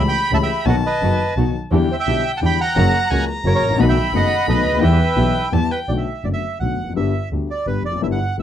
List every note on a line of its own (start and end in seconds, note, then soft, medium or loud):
0.00 0.11 C#2 medium
0.00 0.11 C#3 medium
0.00 0.11 E3 soft
0.00 0.11 A3 soft
0.00 0.12 A3 soft
0.00 0.11 C#4 soft
0.00 0.12 C#4 soft
0.00 0.11 G4 medium
0.00 0.12 G4 medium
0.00 0.67 B5 loud
0.08 0.31 G5 medium
0.08 0.32 B5 loud
0.31 0.46 C#2 medium
0.31 0.47 C#3 medium
0.31 0.46 E3 soft
0.31 0.46 A3 soft
0.31 0.46 C#4 soft
0.31 0.47 G4 soft
0.31 0.37 E5 medium
0.31 0.38 A5 medium
0.43 0.66 E5 medium
0.43 0.66 G5 medium
0.66 0.81 B1 medium
0.66 0.81 B2 medium
0.66 0.81 D#3 medium
0.66 0.81 F#3 medium
0.66 0.81 B3 medium
0.66 0.81 D#4 medium
0.66 0.81 F#4 medium
0.66 0.76 D#5 medium
0.66 0.76 F#5 medium
0.66 1.54 A5 medium
0.86 1.34 B4 medium
0.86 1.34 D#5 medium
1.01 1.16 F#1 medium
1.01 1.16 F#2 medium
1.01 1.16 D#3 soft
1.01 1.16 F#3 soft
1.01 1.16 B3 soft
1.01 1.16 B3 medium
1.01 1.16 D#4 soft
1.01 1.16 F#4 medium
1.01 1.17 F#4 medium
1.37 1.51 B1 medium
1.37 1.52 B1 medium
1.37 1.52 B2 soft
1.37 1.52 D#3 soft
1.37 1.52 F#3 soft
1.37 1.51 B3 soft
1.37 1.52 B3 soft
1.37 1.52 D#4 soft
1.37 1.51 F#4 medium
1.37 1.52 F#4 soft
1.71 1.86 E2 medium
1.71 1.87 E2 medium
1.71 1.87 D3 medium
1.71 1.87 E3 medium
1.71 1.87 G3 medium
1.71 1.87 B3 medium
1.71 1.86 D4 medium
1.71 1.86 E4 medium
1.71 1.87 E4 medium
1.71 1.87 G4 medium
1.71 2.79 G5 medium
1.91 1.95 C5 medium
1.91 1.96 E5 medium
1.99 2.31 E5 medium
1.99 2.32 G5 loud
2.07 2.22 B1 medium
2.07 2.22 B2 medium
2.07 2.22 D3 soft
2.07 2.22 G3 soft
2.07 2.22 B3 soft
2.07 2.22 D4 soft
2.07 2.22 E4 soft
2.07 2.22 G4 medium
2.37 2.40 F#5 medium
2.37 2.40 A5 medium
2.41 2.56 E2 medium
2.41 2.57 E2 soft
2.41 2.56 D3 soft
2.41 2.57 E3 medium
2.41 2.57 G3 soft
2.41 2.57 B3 soft
2.41 2.56 D4 soft
2.41 2.57 E4 medium
2.41 2.57 E4 soft
2.41 2.57 G4 medium
2.41 2.59 G5 medium
2.46 2.60 B5 loud
2.61 3.25 F#5 medium
2.61 3.25 A#5 loud
2.76 2.91 F#1 medium
2.76 2.91 F#2 medium
2.76 2.91 C#3 medium
2.76 2.91 F#3 medium
2.76 2.91 A#3 medium
2.76 2.91 C#4 medium
2.76 2.91 F#4 medium
2.76 2.91 A#4 medium
2.76 3.12 A#5 medium
3.11 3.25 C#2 medium
3.11 3.25 C#3 medium
3.11 3.25 F#3 soft
3.11 3.25 A#3 soft
3.11 3.25 C#4 medium
3.11 3.25 F#4 medium
3.11 3.25 F#4 soft
3.11 3.25 A#4 medium
3.11 3.28 G#5 medium
3.29 3.82 A#5 loud
3.45 3.59 F#1 medium
3.45 3.59 F#2 medium
3.45 3.59 C#3 soft
3.45 3.59 F#3 medium
3.45 3.59 A#3 soft
3.45 3.60 C#4 medium
3.45 3.60 F#4 soft
3.45 3.60 F#4 medium
3.45 3.60 A#4 medium
3.45 3.54 A#4 medium
3.45 3.53 C#5 medium
3.55 3.78 A#4 medium
3.55 3.78 C#5 medium
3.62 3.70 G#1 soft
3.62 3.78 A1 medium
3.70 3.74 A1 medium
3.75 3.79 A#1 medium
3.75 3.93 B1 medium
3.75 3.93 B1 loud
3.75 3.93 B2 medium
3.75 3.93 D#3 medium
3.75 3.93 A3 medium
3.75 3.93 B3 medium
3.75 3.94 F#4 medium
3.79 3.94 B3 medium
3.79 3.94 D#4 medium
3.79 3.94 A4 medium
3.79 3.85 B4 medium
3.79 3.85 D#5 medium
3.79 4.82 B5 loud
3.89 4.13 E5 medium
3.89 4.15 G5 medium
4.12 4.28 F#1 medium
4.12 4.27 F#2 medium
4.12 4.28 D#3 soft
4.12 4.28 A3 soft
4.12 4.28 B3 medium
4.12 4.28 D#4 soft
4.12 4.28 F#4 medium
4.12 4.28 A4 medium
4.12 4.47 D#5 medium
4.12 4.47 F#5 loud
4.47 4.62 B1 medium
4.47 4.63 B1 medium
4.47 4.62 B2 medium
4.47 4.62 D#3 soft
4.47 4.62 A3 soft
4.47 4.62 B3 medium
4.47 4.62 B3 soft
4.47 4.62 D#4 medium
4.47 4.62 F#4 medium
4.47 4.62 A4 medium
4.47 4.81 B4 medium
4.47 4.84 D#5 medium
4.66 4.74 C#2 medium
4.66 4.81 D2 medium
4.74 4.78 D2 medium
4.74 4.82 D#2 medium
4.81 4.97 E2 medium
4.81 4.96 E3 medium
4.81 4.96 G3 medium
4.81 4.96 B3 medium
4.81 4.96 E4 medium
4.81 4.96 G4 medium
4.81 4.97 G4 medium
4.81 5.49 B4 medium
4.81 5.49 E5 medium
4.81 5.55 G5 medium
5.16 5.31 B1 medium
5.16 5.32 B1 medium
5.16 5.31 B2 medium
5.16 5.31 E3 medium
5.16 5.31 G3 soft
5.16 5.31 B3 medium
5.16 5.32 B3 soft
5.16 5.31 E4 medium
5.16 5.31 G4 medium
5.16 5.32 G4 medium
5.52 5.68 E2 medium
5.52 5.68 E3 medium
5.52 5.68 G3 medium
5.52 5.67 B3 medium
5.52 5.68 B3 medium
5.52 5.67 E4 medium
5.52 5.68 G4 medium
5.52 5.73 A5 medium
5.71 5.79 B4 medium
5.71 5.89 G5 medium
5.88 6.04 B1 medium
5.88 6.04 B2 medium
5.88 6.04 D3 soft
5.88 6.04 A3 soft
5.88 6.04 B3 soft
5.88 6.04 F#4 medium
5.88 5.93 D5 medium
5.97 6.25 E5 medium
6.24 6.40 F#1 soft
6.24 6.40 F#2 soft
6.24 6.39 D3 soft
6.24 6.40 A3 soft
6.24 6.40 B3 soft
6.24 6.40 F#4 soft
6.24 6.28 D5 medium
6.33 6.58 E5 medium
6.60 6.75 B1 soft
6.60 6.76 B1 soft
6.60 6.76 B2 soft
6.60 6.76 D3 soft
6.60 6.76 A3 soft
6.60 6.76 B3 soft
6.60 6.76 F#4 soft
6.60 6.93 F#5 medium
6.78 6.95 F1 soft
6.84 6.88 E2 soft
6.89 6.92 F2 soft
6.94 7.11 G1 medium
6.94 6.97 F#2 medium
6.94 7.11 G2 medium
6.94 7.11 D3 medium
6.94 7.11 G3 soft
6.94 7.11 B3 soft
6.94 7.11 G4 medium
6.94 7.29 E5 medium
7.31 7.46 D2 soft
7.31 7.47 D2 soft
7.31 7.47 D3 soft
7.31 7.47 G3 soft
7.31 7.47 B3 soft
7.31 7.47 G4 soft
7.51 7.66 D5 medium
7.67 7.82 G1 medium
7.67 7.82 G1 soft
7.67 7.82 G2 soft
7.67 7.82 D3 soft
7.67 7.82 G3 soft
7.67 7.82 B3 soft
7.67 7.82 G4 soft
7.67 7.83 B4 medium
7.85 8.02 F1 soft
7.85 7.93 E2 soft
7.85 8.01 D5 medium
7.93 7.97 F2 soft
7.97 8.02 F#2 medium
8.01 8.17 G1 medium
8.01 8.17 G2 medium
8.01 8.17 D3 medium
8.01 8.17 G3 soft
8.01 8.17 B3 soft
8.01 8.17 E4 medium
8.01 8.07 E5 medium
8.12 8.36 F#5 medium
8.37 8.42 G1 soft
8.37 8.42 G2 soft
8.37 8.42 D3 soft
8.37 8.42 G3 soft
8.37 8.42 B3 soft
8.37 8.42 E4 soft